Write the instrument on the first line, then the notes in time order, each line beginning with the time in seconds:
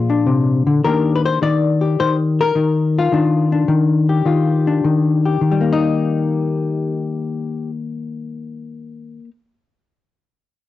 hollow-body jazz guitar
Already playing: A#2 F3 F4 G#4
0.10 D4
0.26 C3
0.67 D3
0.84 D#3 A#3 D4 G4 A#4
1.15 B4
1.25 C5
1.42 D#3 D5
1.81 G4
2.00 D#3 C5
2.41 A#4
2.55 D#3
2.99 F4
3.12 D#3 D4
3.52 D4
3.68 D#3
4.09 G4
4.26 D#3 F4
4.67 D4
4.84 D#3
5.25 G4
5.41 D#3
5.51 G3
5.61 A#3
5.73 D#4